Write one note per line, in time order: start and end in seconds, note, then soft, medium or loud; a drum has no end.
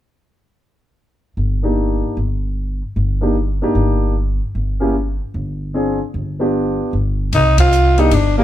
1.37 2.01 G1 medium
1.63 2.14 A#3 soft
1.63 2.14 D4 soft
1.63 2.14 D#4 soft
1.63 2.15 G4 soft
2.17 2.81 G1 medium
2.96 3.60 G1 medium
3.21 3.34 A#3 soft
3.21 3.34 D4 soft
3.21 3.35 D#4 soft
3.21 3.35 G4 medium
3.62 4.13 A#3 soft
3.62 4.13 D4 soft
3.62 4.13 D#4 soft
3.62 4.14 G4 medium
3.75 4.39 G1 medium
4.55 5.19 G1 medium
4.80 4.93 A#3 soft
4.80 4.93 C#4 soft
4.80 4.94 E4 soft
4.80 4.94 G4 medium
5.34 5.98 G1 medium
5.74 5.97 C4 soft
5.74 5.97 D4 soft
5.74 5.97 F4 soft
5.74 5.98 G#4 medium
6.14 6.78 G1 medium
6.39 6.90 B3 soft
6.39 6.91 D4 soft
6.39 6.91 F4 soft
6.39 6.91 G4 medium
6.93 7.30 G1 medium
7.32 8.08 C2 medium
7.32 7.58 D#4 medium
7.32 kick soft
7.32 ride medium
7.58 8.01 F4 medium
7.58 kick medium
7.58 ride medium
7.72 hi-hat pedal soft
7.98 8.10 A#3 medium
7.98 8.11 D4 medium
7.98 8.11 D#4 medium
7.98 8.15 D#4 medium
7.98 8.11 G4 medium
7.98 ride soft
8.11 8.44 G1 medium
8.11 8.37 D4 medium
8.11 kick soft
8.11 ride medium
8.38 8.44 A#3 medium
8.38 8.44 D4 medium
8.38 8.44 D#4 medium
8.38 8.44 G4 medium